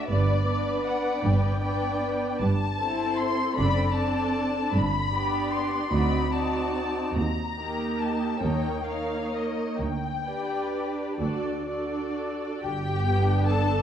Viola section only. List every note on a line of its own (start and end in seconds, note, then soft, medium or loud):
0.08 0.46 B3 soft
0.08 0.46 D4 soft
0.47 1.60 B3 soft
0.47 1.60 D4 soft
1.61 2.40 B3 soft
1.61 2.40 D4 soft
2.80 3.55 C4 soft
2.80 3.55 E4 soft
3.56 3.93 C4 soft
3.56 3.93 D4 soft
3.94 4.72 C4 soft
3.94 4.72 D4 soft
5.12 5.90 B3 soft
5.12 5.90 D4 soft
5.91 6.31 C4 soft
5.91 6.32 D#4 soft
6.32 7.14 C4 soft
6.32 7.15 D#4 soft
7.57 8.40 A#3 soft
7.57 8.40 D#4 soft
8.41 8.84 A#3 soft
8.41 8.85 D#4 soft
8.86 9.78 A#3 soft
8.86 9.78 D#4 soft
10.26 11.19 D4 soft
10.26 11.19 G4 soft
11.20 11.66 D4 soft
11.20 11.67 F#4 soft
11.68 12.61 D4 soft
11.68 12.62 F#4 soft
13.06 13.82 B3 medium
13.06 13.82 D4 soft